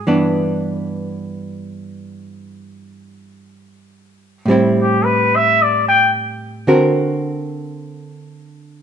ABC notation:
X:1
M:4/4
L:1/16
Q:"Swing" 1/4=54
K:G
V:1 name="Muted trumpet"
z16 | z G B e d g z8 z2 |]
V:2 name="Hollow-body jazz guitar"
[G,,E,B,D]16 | [A,,G,CE]8 [D,CF^A]8 |]